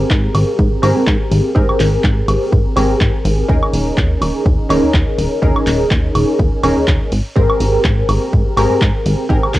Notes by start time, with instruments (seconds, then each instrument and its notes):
Already playing: analog polysynth C4 G4 G#4 A#4
0.10 analog synth bass G#2, kick, clap, ride
0.35 analog synth bass G#1, open hi-hat, ride, high woodblock
0.59 analog synth bass G#2, kick, ride
0.72 analog synth bass G#1
0.82 analog synth bass G#1, analog polysynth C4 G4 G#4 A#4, open hi-hat, ride, high woodblock
0.97 analog synth bass G#2
1.07 analog synth bass G#2, kick, clap, ride
1.31 analog synth bass G#1, open hi-hat, ride
1.55 analog synth bass G#2, analog polysynth C4 G4 G#4 A#4, kick, ride
1.69 analog synth bass G#1, high woodblock
1.80 analog synth bass G#1, clap, open hi-hat, ride
2.04 analog synth bass G#2, kick, clap, ride
2.28 analog synth bass G#1, open hi-hat, ride, high woodblock
2.52 analog synth bass G#2, kick, ride
2.66 analog synth bass G#1
2.76 analog synth bass G#1, analog polysynth C4 G4 G#4 A#4, open hi-hat, ride, high woodblock
3.01 analog synth bass G#2, kick, clap, ride
3.25 analog synth bass G#1, open hi-hat, ride
3.48 analog synth bass D#2, analog polysynth C#4 D#4 G#4 A#4, kick, ride
3.63 high woodblock
3.73 analog synth bass D#1, open hi-hat, ride
3.97 analog synth bass D#2, kick, clap, ride
4.22 analog synth bass D#1, open hi-hat, ride, high woodblock
4.46 analog synth bass D#2, kick, ride
4.59 analog synth bass D#1
4.69 analog synth bass D#1, analog polysynth C#4 D#4 G#4 A#4, open hi-hat, ride, high woodblock
4.83 analog synth bass D#2
4.94 analog synth bass D#2, kick, clap, ride
5.18 analog synth bass D#1, open hi-hat, ride
5.42 analog synth bass D#2, analog polysynth C#4 D#4 G#4 A#4, kick, ride
5.56 analog synth bass D#1, high woodblock
5.67 analog synth bass D#1, clap, open hi-hat, ride
5.91 analog synth bass D#2, kick, clap, ride
6.15 analog synth bass D#1, open hi-hat, ride, high woodblock
6.39 analog synth bass D#2, kick, ride
6.53 analog synth bass D#1
6.63 analog synth bass D#1, analog polysynth C#4 D#4 G#4 A#4, open hi-hat, ride, high woodblock
6.77 analog synth bass D#2
6.88 analog synth bass D#2, kick, clap, ride
7.12 analog synth bass G#1, open hi-hat, ride
7.36 analog synth bass G#2, analog polysynth C4 G4 G#4 A#4, kick, ride
7.50 high woodblock
7.60 analog synth bass G#1, open hi-hat, ride
7.84 analog synth bass G#2, kick, clap, ride
8.09 analog synth bass G#1, open hi-hat, ride, high woodblock
8.33 analog synth bass G#2, kick, ride
8.46 analog synth bass G#1
8.57 analog synth bass G#1, analog polysynth C4 G4 G#4 A#4, open hi-hat, ride, high woodblock
8.70 analog synth bass G#2
8.81 analog synth bass G#2, kick, clap, ride
9.06 analog synth bass G#1, open hi-hat, ride
9.29 analog synth bass G#2, analog polysynth C4 G4 G#4 A#4, kick, ride
9.43 analog synth bass G#1, high woodblock
9.54 analog synth bass G#1, kick, clap, open hi-hat, ride